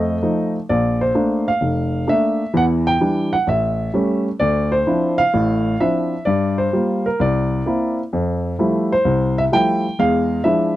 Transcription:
grand piano
Already playing: F2 A3 D#5
0.22 F3 A3 D#4
0.69 A#1 D5
1.01 C5
1.15 A3 A#3 D4
1.48 F5
1.61 F1
2.07 A3 A#3 D4 E5
2.54 E2 E3 F#5
2.87 G5
3.01 E3 G3 D4
3.33 F#5
3.47 A1 E5
3.94 G3 A3 C#4
4.40 D2 D5
4.72 C5
4.87 F3 C4 D4 E4
5.18 F5
5.34 A1 A2
5.80 F3 C4 D4 E4 E5
6.25 G2 D5
6.58 C5
6.73 G3 A#3 F4
7.06 A#4
7.20 C2 D5
7.66 A#3 C4 E4
8.13 F2
8.59 F3 G3 A3 E4
8.92 C5
9.05 C2
9.38 E5
9.52 F3 G3 A3 E4 G5
9.99 E2 G#3 F5
10.44 F3 G#3 D4 E4 E5

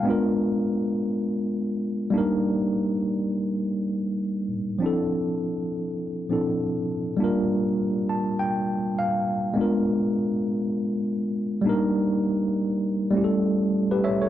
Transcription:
tine electric piano
0.03 G#3 B3 D4
0.08 F4 A#4
2.10 G3 A#3 D4
2.16 D#4 A#4
4.79 F3 C4 D4
4.84 E4 A4
6.30 F3 C4 D4 E4 A4
7.17 G3 A#3 D4
7.22 F4 A#4
8.09 A5
8.39 G5
8.99 F5
9.54 G#3 B3 D4
9.59 F4 A#4
11.61 G3 A#3
11.66 D4 D#4 A#4
13.11 G3 A3 C#4
13.16 E4 G4
13.24 A4
13.91 G4 B4
14.04 C#5 E5
14.22 A4 C#5

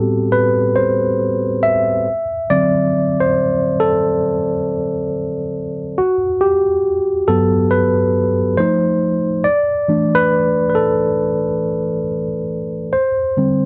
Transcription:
tine electric piano
Already playing: A2 G3 B3 C4 F#4 G4 A4
0.32 B4
0.76 C5
1.63 E5
2.50 D3 F#3 C4 D5
3.20 C5
3.80 A4
5.98 F#4
6.41 G4
7.28 G2 F#3 B3 A4
7.71 B4
8.57 F3 A3 D#4 C5
9.44 D5
9.88 E3 A3 D4
10.15 B4
10.70 B4
10.75 A4
12.93 C5
13.37 D3 G3 C4

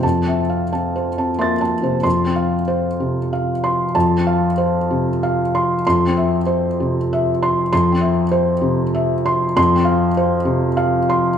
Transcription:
felt piano
0.03 F2 A5
0.27 C4 E5
0.50 F5
0.73 C4 A5
0.96 C5
1.18 C4 A5
1.39 A#3 E5 C6 A6
1.61 C4 A5
1.82 C3 C5
2.03 F2 C6
2.27 C4
2.36 F5
2.68 C5
3.00 C3
3.33 F5
3.64 C6
3.95 F2 A5
4.18 C4
4.27 F5
4.58 C5
4.91 C3
5.23 F5
5.55 C6
5.87 F2 C6
6.07 C4
6.17 E5
6.46 C5
6.80 C3
7.13 E5
7.43 C6
7.73 F2 C6
7.92 C4
8.01 E5
8.31 C5
8.61 C3
8.95 E5
9.26 C6
9.56 F2 C6
9.76 C4
9.85 F5
10.17 C5
10.45 C3
10.77 F5
11.10 C6

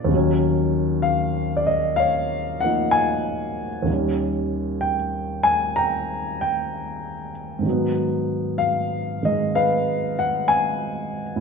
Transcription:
grand piano
Already playing: A#2 F3 G#3 D4 D5 F5
0.04 D#2
0.09 D#3 F#3
0.16 C#4
1.02 F5
1.57 D5
1.66 D#5
1.96 C#5 F5
2.61 F3 A#3 F#5
2.66 D#4
2.91 G#5
3.82 D#2 D#3
3.90 G3 C#4
4.81 G5
5.43 G#5
5.76 G5 A#5
6.41 G5
7.59 G#2 D#3
7.66 F#3 B3
8.58 F5
9.23 D#3 G#3 D#5
9.55 B4 F5
10.19 F#5
10.48 G#5
11.36 A2

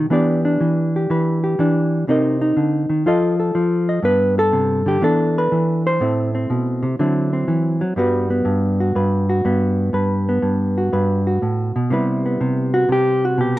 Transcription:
hollow-body jazz guitar
Already playing: G4
0.10 E3 B3 D4 G4 D5
0.45 D4
0.61 E3
0.96 G4
1.10 E3 B4
1.44 G4
1.59 E3 D4
2.08 C3 C4 D#4 A#4 D#5
2.41 D#4
2.57 D3
2.90 D#3
3.06 F3 F4 A4 D#5
3.40 A4
3.55 F3
3.89 D#5
4.03 G2 B3 B4
4.39 A4
4.53 C3
4.86 D3 G4
5.02 E3 B3 D4 A4
5.38 B4
5.52 E3
5.87 C5
6.00 A2 A3 C4 E4
6.35 C4
6.50 B2
6.83 C3
6.99 D3 F#3 C4 E4
7.33 C4
7.48 E3
7.81 F#3
7.96 G2 G3 B3 F#4 B4
8.30 B3
8.45 G2
8.80 F#4
8.95 G2 B4
9.29 F#4
9.45 G2 B3
9.93 G2 B4
10.29 B3
10.42 G2
10.78 F#4
10.93 G2 B4
11.27 F#4
11.42 A2
11.76 B2
11.90 C3 G3 B3 E4 B4
12.26 B3
12.41 C3
12.74 F#4
12.89 C3 G4
13.25 F#4
13.38 B2 G4

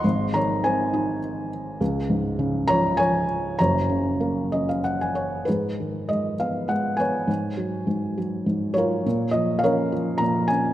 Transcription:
felt piano
Already playing: D#5 C6
0.04 G#1 G#2
0.34 D#3 C#5 A#5
0.64 C4 C5 G#5
0.93 D#4
1.81 C#2
2.10 G#2
2.39 C#3
2.68 F3 C#5 A#5
2.97 C#5 G#5
3.59 F#1 F#2 C#5 A#5
3.89 C#3
4.20 A#3
4.52 C#4 D#5
4.69 F5
4.84 F#5
5.01 G#5
5.15 C#5
5.45 D#4 G#4 B4
5.50 G#2
5.80 D#3
6.09 G#3 D#5
6.40 B3 F5
6.68 G#3 F#5
6.97 B3 B4 C#5 G#5
7.28 G#2
7.57 F#3
7.87 G#2
8.18 F#3
8.46 G#2
8.74 F#3 F4 C#5
8.78 A#4
9.06 A#2
9.31 F3 D#5
9.59 F5
9.63 C#4 A#4 C#5
9.92 F3
10.18 A#2 A#5
10.48 C#4 G#5

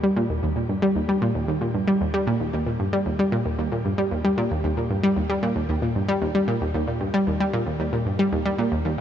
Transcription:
synth arpeggio sound
0.03 G3
0.16 A#2
0.30 D#2
0.43 D#2
0.56 A#2
0.69 G2
0.82 G3
0.96 D#2
1.09 G3
1.22 A#2
1.35 D#2
1.48 D#2
1.61 A#2
1.74 G2
1.88 G3
2.01 D#2
2.14 G3
2.27 A#2
2.40 D#2
2.54 D#2
2.66 A#2
2.80 G2
2.93 G3
3.06 D#2
3.19 G3
3.32 A#2
3.46 D#2
3.59 D#2
3.72 A#2
3.85 G2
3.98 G3
4.11 D#2
4.24 G3
4.38 A#2
4.51 D#2
4.64 D#2
4.77 A#2
4.90 G2
5.03 G3
5.17 D#2
5.30 G3
5.43 A#2
5.56 D#2
5.69 D#2
5.82 A#2
5.96 G2
6.09 G3
6.22 D#2
6.35 G3
6.48 A#2
6.61 D#2
6.74 D#2
6.87 A#2
7.01 G2
7.14 G3
7.27 D#2
7.40 G3
7.53 A#2
7.66 D#2
7.80 D#2
7.93 A#2
8.06 G2
8.19 G3
8.32 D#2
8.45 G3
8.59 A#2
8.72 D#2
8.85 D#2

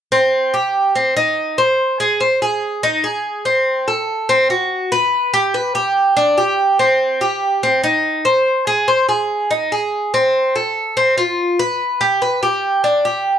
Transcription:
cuban tres
0.12 C4
0.54 G4
0.95 C4
1.17 D#4
1.58 C5
2.00 G#4
2.20 C5
2.42 G#4
2.83 D#4
3.04 G#4
3.45 C4
3.88 A4
4.29 C4
4.50 F#4
4.92 B4
5.34 G4
5.54 B4
5.75 G4
6.17 D4
6.38 G4
6.79 C4
7.21 G4
7.63 C4
7.84 D#4
8.25 C5
8.67 G#4
8.88 C5
9.09 G#4
9.51 D#4
9.72 G#4
10.14 C4
10.56 A4
10.97 C4
11.18 F4
11.59 B4
12.01 G4
12.22 B4
12.43 G4
12.84 D4
13.05 G4

